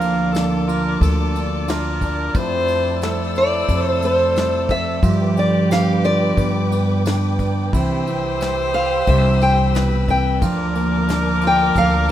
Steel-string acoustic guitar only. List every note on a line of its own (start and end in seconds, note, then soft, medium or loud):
0.00 1.99 F5 medium
3.38 3.89 D5 medium
3.89 4.05 C5 medium
4.05 4.73 C5 medium
4.71 5.39 E5 loud
5.39 5.71 D5 medium
5.72 6.05 F5 loud
6.05 7.36 D5 medium
8.74 9.08 F5 loud
9.09 9.40 E5 medium
9.43 10.09 G5 loud
10.10 10.41 G5 medium
11.47 11.77 G5 loud
11.78 12.10 F5 medium